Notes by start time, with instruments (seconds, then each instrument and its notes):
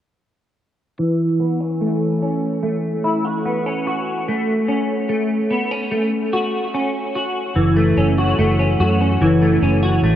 0.99 clean electric guitar E3
1.40 clean electric guitar B3
1.61 clean electric guitar C#4
1.81 clean electric guitar A3
2.22 clean electric guitar C#4
2.63 clean electric guitar A3
3.04 clean electric guitar E4
3.25 clean electric guitar F#4
3.45 clean electric guitar B3
3.66 clean electric guitar C#4
3.87 clean electric guitar F#4
4.28 clean electric guitar A3
4.69 clean electric guitar C#4
5.09 clean electric guitar A3
5.51 clean electric guitar B3
5.71 clean electric guitar C#4
5.91 clean electric guitar A3
6.33 clean electric guitar F#4
6.74 clean electric guitar C#4
7.15 clean electric guitar F#4
7.56 fingered electric bass F#1, clean electric guitar E3
7.76 clean electric guitar A3
7.97 fingered electric bass F#1, clean electric guitar C#4
8.18 clean electric guitar F#4
8.39 fingered electric bass F#1, clean electric guitar A3
8.59 clean electric guitar C#4
8.80 fingered electric bass F#2, clean electric guitar F#4
9.01 clean electric guitar C#4
9.21 fingered electric bass F#1, clean electric guitar E3
9.42 clean electric guitar A3
9.62 fingered electric bass F#1, clean electric guitar C#4
9.83 clean electric guitar F#4
10.03 fingered electric bass A1, clean electric guitar A3